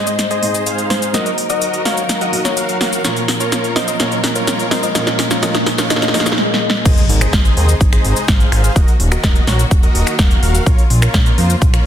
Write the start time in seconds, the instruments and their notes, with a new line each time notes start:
Already playing: grand piano G#2 G#3 C4 D#4 C5, string section G#3 D#4 C5, supersaw synth G#4 C5 D#5, riser
0.07 synth pluck D#5, closed hi-hat, cabasa
0.19 snare, closed hi-hat, cabasa
0.31 supersaw synth G#4 C5 D#5, closed hi-hat, cabasa
0.41 grand piano G#2 G#3 C4 D#4 D#5, open hi-hat
0.55 closed hi-hat, cabasa
0.66 supersaw synth G#4 C5 F5, closed hi-hat, cabasa
0.78 closed hi-hat, cabasa
0.90 supersaw synth G#4 C5 F5, synth pluck C5, snare, open hi-hat
1.02 closed hi-hat, cabasa
1.13 grand piano F#3 A#3 D#4 A#4, string section F#3 A#4, supersaw synth F#4 A#4 D#5, synth pluck D#5, snare, closed hi-hat, cabasa
1.26 synth pluck D#5, closed hi-hat, cabasa
1.38 open hi-hat
1.50 supersaw synth F#4 A#4 D#5, synth pluck D#5, closed hi-hat, cabasa
1.62 closed hi-hat, cabasa
1.74 closed hi-hat, cabasa
1.85 supersaw synth F#4 A#4 C#5, synth pluck F5, snare, open hi-hat
1.97 closed hi-hat, cabasa
2.09 snare, closed hi-hat, cabasa
2.21 supersaw synth F#4 A#4 D#5, closed hi-hat, cabasa
2.32 grand piano F#3 A#3 D#4 A#4, open hi-hat
2.45 synth pluck C#5, snare, closed hi-hat, cabasa
2.57 supersaw synth F#4 A#4 F5, closed hi-hat, cabasa
2.69 closed hi-hat, cabasa
2.81 supersaw synth F#4 A#4 F5, snare, open hi-hat
2.93 closed hi-hat, cabasa
3.03 grand piano A#2 F3 A#3 C#4 A#4, string section F3 C#4 A#4, supersaw synth F4 A#4 C#5, snare, closed hi-hat, cabasa
3.17 closed hi-hat, cabasa
3.28 snare, open hi-hat
3.40 supersaw synth F4 A#4 C#5, closed hi-hat, cabasa
3.52 snare, closed hi-hat, cabasa
3.64 closed hi-hat, cabasa
3.76 supersaw synth F4 A#4 C5, synth pluck D#5, snare, open hi-hat
3.88 synth pluck D#5, closed hi-hat, cabasa
3.99 grand piano A#2 F3 A#3 C#4 A#4, supersaw synth F4 A#4 C#5, snare, closed hi-hat, cabasa
4.12 closed hi-hat, cabasa
4.24 snare, open hi-hat
4.36 supersaw synth F4 A#4 C#5, closed hi-hat, cabasa
4.47 snare, closed hi-hat, cabasa
4.59 closed hi-hat, cabasa
4.71 supersaw synth F4 A#4 C5, synth pluck D#5, snare, open hi-hat
4.83 synth pluck D#5, closed hi-hat, cabasa
4.94 grand piano A#2 F3 A#3 C#4 A#4, supersaw synth F4 A#4 C#5, synth pluck D#5, snare, closed hi-hat, cabasa
5.07 synth pluck D#5, snare, closed hi-hat, cabasa
5.19 snare, open hi-hat
5.31 supersaw synth F4 A#4 C#5, snare, closed hi-hat, cabasa
5.41 grand piano A#2 F3 A#3 C#4 A#4, supersaw synth F4 A#4 C#5, synth pluck D#5, snare, closed hi-hat, cabasa
5.55 synth pluck D#5, snare, closed hi-hat, cabasa
5.66 snare, open hi-hat
5.78 supersaw synth F4 A#4 C#5, snare, closed hi-hat, cabasa
5.89 grand piano A#2 F3 A#3 C#4 A#4, supersaw synth F4 A#4 C#5, synth pluck D#5, snare, closed hi-hat, swell, cabasa
5.96 snare
6.02 synth pluck D#5, snare, closed hi-hat, cabasa
6.08 snare
6.13 grand piano A#2 F3 A#3 C#4 A#4, supersaw synth F4 A#4 C#5, synth pluck D#5, snare, open hi-hat
6.20 snare
6.26 synth pluck D#5, snare, closed hi-hat, cabasa
6.32 snare
6.38 snare
6.54 snare
6.70 snare
6.86 analog synth bass G#1, string section C3 G#3 D#4, supersaw synth G#4 C5 D#5, kick, closed hi-hat, crash, impact, cabasa
6.97 closed hi-hat, cabasa
7.09 analog synth bass G#1, open hi-hat
7.21 supersaw synth G#4 C5 D#5, finger snap, closed hi-hat, cabasa
7.33 analog synth bass G#1, kick, snare, closed hi-hat, cabasa
7.45 closed hi-hat, cabasa
7.57 analog synth bass D#2, supersaw synth G#4 C5 D#5, open hi-hat
7.69 closed hi-hat, cabasa
7.81 analog synth bass G#1, kick, closed hi-hat, cabasa
7.93 supersaw synth G#4 C5 D#5, finger snap, closed hi-hat, cabasa
8.05 analog synth bass G#1, open hi-hat
8.16 closed hi-hat, cabasa
8.28 analog synth bass G#1, supersaw synth G#4 C5 F5, kick, snare, closed hi-hat, cabasa
8.40 closed hi-hat, cabasa
8.52 analog synth bass G#1, supersaw synth G#4 C5 F5, finger snap, open hi-hat
8.64 closed hi-hat, cabasa
8.76 analog synth bass D#1, string section D#3 A#3 F#4, supersaw synth F#4 A#4 D#5, kick, closed hi-hat, cabasa
8.88 closed hi-hat, cabasa
9.00 analog synth bass D#1, open hi-hat
9.12 supersaw synth F#4 A#4 D#5, finger snap, closed hi-hat, cabasa
9.24 analog synth bass D#1, kick, snare, closed hi-hat, cabasa
9.35 closed hi-hat, cabasa
9.47 analog synth bass A#1, supersaw synth F#4 A#4 C#5, snare, open hi-hat
9.59 closed hi-hat, cabasa
9.71 analog synth bass D#1, kick, closed hi-hat, cabasa
9.83 supersaw synth F#4 A#4 D#5, closed hi-hat, cabasa
9.95 analog synth bass D#1, open hi-hat
10.07 finger snap, closed hi-hat, cabasa
10.19 analog synth bass D#1, supersaw synth F#4 A#4 F5, kick, snare, closed hi-hat, cabasa
10.31 closed hi-hat, cabasa
10.43 analog synth bass D#1, supersaw synth F#4 A#4 F5, open hi-hat
10.55 closed hi-hat, cabasa
10.66 analog synth bass A#1, string section C#3 A#3 F4, supersaw synth F4 A#4 C#5, kick, closed hi-hat, cabasa
10.78 closed hi-hat, cabasa
10.90 analog synth bass A#1, open hi-hat
11.02 supersaw synth F4 A#4 C#5, finger snap, closed hi-hat, cabasa
11.14 analog synth bass A#1, kick, snare, closed hi-hat, cabasa
11.26 closed hi-hat, cabasa
11.38 analog synth bass F2, supersaw synth F4 A#4 C5, open hi-hat
11.50 closed hi-hat, cabasa
11.62 analog synth bass A#1, kick, closed hi-hat, cabasa
11.74 supersaw synth F4 A#4 C#5, finger snap, closed hi-hat, cabasa